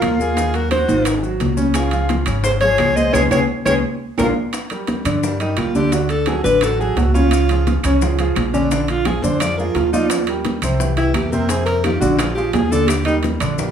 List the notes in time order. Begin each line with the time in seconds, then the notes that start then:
Already playing: F3 F4 A#4
0.02 D#2, high bongo, low bongo, high conga, high timbale, claves, maracas
0.19 A#3 F4 G#4 A#4, high bongo, high conga, maracas
0.37 D#3 D#4, high bongo, high conga, high timbale, maracas
0.54 F#3 F#4 A#4, high bongo, high conga, high timbale, maracas
0.71 F#4 C5, high bongo, high conga, high timbale, claves, maracas
0.88 G#1 D#3 D#4, high conga, maracas
1.05 high bongo, high conga, high timbale, claves, maracas
1.23 F#3 F#4, high bongo, high conga, maracas
1.40 C#2, high bongo, low bongo, high conga, high timbale, maracas
1.57 C#3 C#4, high bongo, high conga, maracas
1.74 F4 G#4, high bongo, high conga, high timbale, claves, maracas
1.91 F3 F4, high bongo, high conga, high timbale, maracas
2.09 high bongo, high conga, high timbale, maracas
2.26 G#1 C#3 C#4, high conga, high timbale, claves, maracas
2.44 G#4 C5, high bongo, high conga, maracas
2.61 F3 F4 G#4 C#5, high bongo, high conga, high timbale, maracas
2.78 C#2, high bongo, low bongo, high conga, high timbale, low timbale, claves, maracas
2.96 G#3 G#4 C5 D#5, high bongo, high conga, maracas
3.13 C#2 G#3 B3 C#4 G#4 C#5, low bongo, high conga, high timbale, claves, maracas
3.31 C#2 G#3 B3 C#4 G#4 C#5, low bongo, high conga, high timbale, claves, maracas
3.65 C#2 G#3 B3 C#4 G#4 C#5, low bongo, high conga, high timbale, claves, maracas
4.18 A#1 G#3 A#3 D4 F4 A#4, low bongo, high conga, high timbale, claves, maracas
4.53 high bongo, high conga, high timbale, claves, maracas
4.70 G3 G4 A#4, high bongo, high conga, high timbale, maracas
4.87 high bongo, high conga, high timbale, maracas
5.05 G2 D3 D4 D5, high conga, low conga, high timbale, claves, maracas
5.23 G3 D4 G4 A#4, high bongo, high conga, maracas
5.40 G3 D#4 G4 A#4, high bongo, high conga, high timbale, maracas
5.57 D2 F4, high bongo, low bongo, high conga, high timbale, claves, maracas
5.75 D3 D4 G4 D5, high bongo, high conga, maracas
5.92 D3 D4 F#4 D5, high bongo, high conga, high timbale, maracas
6.09 A4, high bongo, high conga, high timbale, maracas
6.26 F#3 F#4 G#4 A4, high bongo, high conga, high timbale, claves, maracas
6.44 A1 D3 D4 B4 D5, high conga, maracas
6.61 F#3 F#4 A4, high bongo, high conga, high timbale, claves, maracas
6.79 F#3 F#4 G#4 A4, high bongo, high conga, maracas
6.96 C#2 F#4, high bongo, low bongo, high conga, high timbale, low timbale, maracas
7.14 C#3 C#4 F4 C#5, high bongo, high conga, maracas
7.31 high bongo, high conga, high timbale, claves, maracas
7.49 F3 F4 G#4, high bongo, high conga, high timbale, maracas
7.67 high bongo, high conga, high timbale, maracas
7.83 C#2 C#3 C#4 C#5, high conga, low conga, high timbale, claves, maracas
8.02 F3 F4 G#4, high bongo, high conga, low conga, maracas
8.19 F3 F4 G#4, high bongo, high conga, high timbale, maracas
8.36 A#1, high bongo, low bongo, high conga, high timbale, claves, maracas
8.54 D3 C#4 D4 D5, high bongo, high conga, maracas
8.71 D3 D4 D5, high bongo, high conga, high timbale, maracas
8.88 F4, high bongo, high conga, high timbale, maracas
9.05 F3 F4 G#4, high bongo, high conga, high timbale, claves, maracas
9.22 F2 D3 D4 C5 D5, high conga, maracas
9.40 F3 F4 G#4 D5, high bongo, high conga, high timbale, claves, maracas
9.58 F3 F4 G#4 A#4, high bongo, high conga, maracas
9.75 D#2 F4, high bongo, low bongo, high conga, high timbale, maracas
9.93 F3 D#4 F4 D5, high bongo, high conga, maracas
10.10 high bongo, high timbale, claves, maracas
10.27 G3 G4 A#4, high bongo, high conga, high timbale, maracas
10.45 high bongo, high conga, high timbale, maracas
10.62 C2 C3 C4 C5, high conga, low conga, high timbale, claves, maracas
10.80 E3 E4 G4, high bongo, high conga, maracas
10.97 E3 E4 G4, high bongo, high conga, high timbale, maracas
11.14 F2 G4, high bongo, low bongo, high conga, high timbale, claves, maracas
11.31 C3 C4 A#4 C5, high bongo, high conga, maracas
11.49 C3 C4 G#4 C5, high bongo, high conga, high timbale, maracas
11.66 A#4, high bongo, high conga, high timbale, maracas
11.84 D#3 D#4 F4 G4, high bongo, high conga, high timbale, claves, maracas
12.00 A#1 D3 D4 F#4 D5, high conga, maracas
12.18 F3 F4 G#4, high bongo, high conga, high timbale, claves, maracas
12.35 F3 F4 G4 G#4, high bongo, maracas
12.39 high conga
12.53 D#2 G#4, high bongo, low bongo, high conga, high timbale, low timbale, maracas
12.71 D3 D4 A4 D5, high bongo, high conga, maracas
12.88 G4, high bongo, high conga, high timbale, claves, maracas
13.05 G3 D#4 G4 A#4, high bongo, high conga, high timbale, maracas
13.23 high bongo, high conga, high timbale, maracas
13.40 A#1 D3 D4 D5, high conga, low conga, high timbale, claves, maracas
13.58 G3 G4 A#4, high bongo, high conga, low conga, maracas